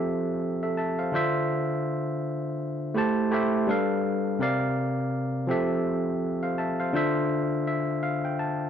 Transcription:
0.00 0.28 F3 medium
0.00 0.29 C4 medium
0.00 0.29 G4 medium
0.00 0.30 A4 medium
0.00 0.30 E5 medium
0.63 0.77 A4 soft
0.63 0.77 E5 medium
0.77 0.98 E5 medium
0.77 0.98 A5 medium
0.99 1.14 C5 medium
0.99 1.33 F5 medium
1.12 2.30 D3 medium
1.12 2.31 D4 medium
1.12 2.31 F4 medium
1.12 2.32 C5 medium
1.16 2.32 E5 loud
2.94 3.24 A3 medium
2.94 3.24 E4 medium
2.94 3.25 G4 medium
2.94 3.25 C5 medium
2.94 3.26 A5 medium
3.31 3.67 A3 medium
3.31 3.68 E4 medium
3.31 3.68 G4 medium
3.31 3.69 C5 medium
3.31 3.69 E5 medium
3.67 4.28 G3 medium
3.67 4.28 D4 medium
3.67 4.29 A4 medium
3.67 4.29 B4 medium
3.67 4.30 F5 medium
4.39 5.29 C3 medium
4.39 5.30 C4 medium
4.39 5.30 A#4 medium
4.39 5.31 D5 medium
4.39 5.31 F5 medium
5.47 6.09 F3 medium
5.47 6.09 C4 medium
5.47 6.10 G4 medium
5.47 6.10 A4 medium
5.51 6.11 E5 loud
6.43 6.58 C5 medium
6.43 6.57 F5 medium
6.58 6.79 E5 medium
6.58 6.78 A5 medium
6.80 6.94 C5 medium
6.80 7.14 F5 medium
6.93 8.11 D3 medium
6.93 8.11 D4 medium
6.93 8.12 F4 medium
6.93 8.12 C5 medium
6.93 7.66 E5 medium
7.67 8.01 E5 medium
8.03 8.23 F5 medium
8.25 8.39 G5 medium
8.39 8.70 A5 medium

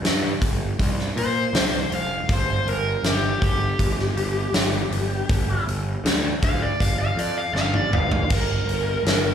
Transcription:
0.02 0.32 G2 medium
0.02 snare loud
0.02 open hi-hat medium
0.41 0.71 G1 medium
0.41 kick medium
0.41 open hi-hat medium
0.79 1.08 C2 medium
0.79 kick medium
0.79 open hi-hat medium
0.99 snare soft
1.16 1.45 A#2 medium
1.16 1.90 C5 medium
1.16 open hi-hat medium
1.53 1.83 C2 medium
1.53 snare loud
1.53 open hi-hat medium
1.90 2.20 F1 medium
1.90 open hi-hat medium
1.95 2.30 F5 medium
2.29 2.58 G1 loud
2.29 kick loud
2.29 open hi-hat medium
2.33 2.68 C5 loud
2.65 2.95 G1 medium
2.65 3.04 A#4 medium
2.65 open hi-hat medium
3.03 3.33 G1 medium
3.03 3.41 G4 loud
3.03 snare loud
3.03 open hi-hat medium
3.42 3.71 G1 medium
3.42 5.64 G4 medium
3.42 kick medium
3.42 open hi-hat medium
3.79 4.09 G1 medium
3.79 kick medium
3.79 open hi-hat medium
3.99 snare soft
4.16 4.46 G1 medium
4.16 open hi-hat medium
4.52 4.83 G1 medium
4.52 snare loud
4.52 open hi-hat medium
4.91 5.21 G1 medium
4.91 open hi-hat medium
5.29 5.59 G1 medium
5.29 kick loud
5.29 open hi-hat medium
5.65 5.96 G1 medium
5.65 open hi-hat medium
6.04 6.34 D2 medium
6.04 snare loud
6.04 open hi-hat medium
6.42 6.72 D2 medium
6.42 6.62 F5 loud
6.42 kick loud
6.42 open hi-hat medium
6.62 6.80 D5 medium
6.80 7.10 G1 medium
6.80 6.99 F5 medium
6.80 kick medium
6.80 open hi-hat medium
7.01 7.18 F5 medium
7.15 7.46 F2 medium
7.15 7.36 D5 medium
7.15 open hi-hat medium
7.37 7.55 F5 medium
7.53 7.83 G1 medium
7.53 7.74 F5 loud
7.53 snare medium
7.74 7.93 D5 loud
7.74 high tom medium
7.91 8.21 G1 medium
7.91 8.30 F5 medium
7.91 mid tom medium
8.12 floor tom medium
8.30 8.60 G1 medium
8.30 9.34 A#4 loud
8.30 kick loud
8.30 open hi-hat medium
8.30 crash medium
8.66 8.96 G1 medium
8.66 open hi-hat medium
9.03 9.34 G1 medium
9.03 snare loud
9.03 open hi-hat medium

